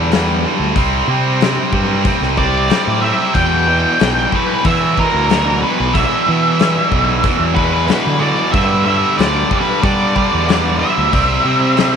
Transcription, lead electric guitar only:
2.38 3.01 D5 medium
3.02 3.36 E5 medium
3.34 3.66 G5 medium
3.67 4.34 G5 loud
4.36 4.67 B4 medium
4.66 4.99 E5 medium
4.99 5.61 A#4 medium
5.62 5.95 B4 medium
5.94 7.52 E5 medium
7.55 7.85 B4 medium
7.87 8.21 B4 medium
8.19 8.50 D5 medium
8.52 8.83 E5 medium
8.85 9.15 E5 medium
9.18 9.58 D5 medium
9.61 9.84 B4 medium
9.83 10.79 D5 medium
10.79 11.96 E5 medium

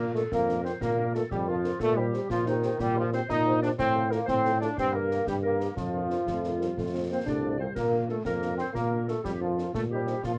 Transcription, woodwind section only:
0.00 0.12 A#4 medium
0.16 0.31 A4 medium
0.32 0.65 A#4 medium
0.64 0.81 C5 medium
0.81 1.12 A#4 medium
1.15 1.31 A4 medium
1.31 1.39 G4 medium
1.47 1.78 F4 medium
1.80 1.97 A4 medium
1.96 2.27 G4 medium
2.30 2.46 F4 medium
2.47 2.78 D#4 medium
2.79 2.96 G4 medium
2.96 3.03 F4 medium
3.13 3.28 C5 medium
3.29 3.60 D#5 medium
3.62 3.69 D5 medium
3.78 4.09 C5 medium
4.10 4.18 A#4 medium
4.25 4.57 C5 medium
4.59 4.67 D5 medium
4.77 4.93 C5 medium
4.92 5.26 A#4 medium
5.26 5.34 G4 medium
5.42 5.74 A#4 medium
5.76 7.05 F4 medium
7.11 7.27 C5 medium
7.28 7.58 D5 medium
7.59 7.75 C5 medium
7.75 8.06 A#4 medium
8.09 8.16 A4 medium
8.25 8.56 A#4 medium
8.60 8.75 C5 medium
8.75 9.06 A#4 medium
9.07 9.24 A4 medium
9.24 9.41 G4 medium
9.41 9.72 F4 medium
9.75 9.82 A4 medium
9.91 10.22 G4 medium
10.24 10.38 F4 medium

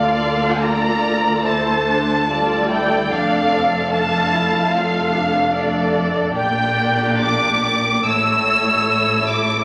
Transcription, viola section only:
0.00 0.12 A3 soft
0.00 1.44 F4 medium
0.12 1.44 A#3 soft
1.42 2.27 A3 medium
1.42 1.85 E4 medium
1.85 2.27 D4 medium
2.27 3.12 G3 soft
2.27 2.69 F4 medium
2.70 3.12 E4 medium
3.12 4.69 A3 medium
3.12 3.52 D4 medium
3.50 3.92 C4 medium
3.92 4.33 D4 medium
4.34 4.73 E4 medium
4.72 5.52 A3 medium
4.72 5.13 F4 medium
5.12 5.53 D4 medium
5.54 6.33 A3 medium
5.54 6.33 D4 medium
6.33 8.01 A#3 medium
6.33 8.01 D4 medium
8.05 9.64 A3 medium
8.05 9.64 E4 medium

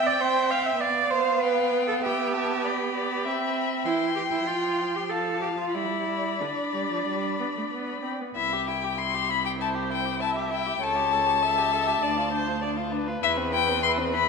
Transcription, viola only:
0.00 0.77 C4 medium
0.79 3.27 B3 medium
3.25 3.87 C4 medium
3.85 4.46 E3 medium
4.46 5.76 F3 medium
5.74 6.34 G3 soft
6.41 6.49 D3 medium
6.73 6.89 G3 soft
6.92 7.06 F3 soft
7.07 7.39 G3 medium
7.40 7.46 B3 soft
7.57 7.63 A3 soft
7.72 8.03 B3 soft
8.04 8.23 C4 soft
8.21 8.36 B3 soft
9.60 10.22 C5 medium
10.21 10.81 E5 medium
10.82 11.44 C#5 medium
11.42 12.04 E5 medium
12.03 12.33 D5 medium
12.33 12.61 C5 medium
12.62 12.70 D5 medium
12.93 14.29 B4 medium

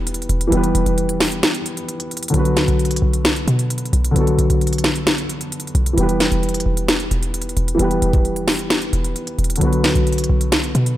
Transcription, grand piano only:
0.00 0.46 E3 medium
0.00 0.47 G3 medium
0.00 0.49 B3 medium
0.00 0.50 G4 medium
0.00 0.51 B4 medium
0.47 2.28 E3 medium
0.47 2.29 G3 medium
0.52 2.30 B3 medium
0.52 2.31 G4 medium
0.57 2.33 B4 medium
2.30 4.10 D3 medium
2.30 4.11 F#3 medium
2.34 4.12 B3 medium
2.34 4.14 F#4 medium
2.39 4.15 B4 medium
4.11 5.92 D3 medium
4.11 5.93 F#3 medium
4.16 5.94 B3 medium
4.16 5.95 F#4 medium
4.20 5.96 A4 medium
5.93 7.73 E3 medium
5.93 7.75 G3 medium
5.98 7.76 B3 medium
5.98 7.77 G4 medium
6.03 7.78 B4 medium
7.75 9.55 E3 medium
7.75 9.56 G3 medium
7.79 9.58 B3 medium
7.79 9.59 G4 medium
7.84 9.60 B4 medium
9.57 10.97 D3 medium
9.57 10.97 F#3 medium
9.62 10.97 B3 medium
9.62 10.97 F#4 medium
9.66 10.97 B4 medium

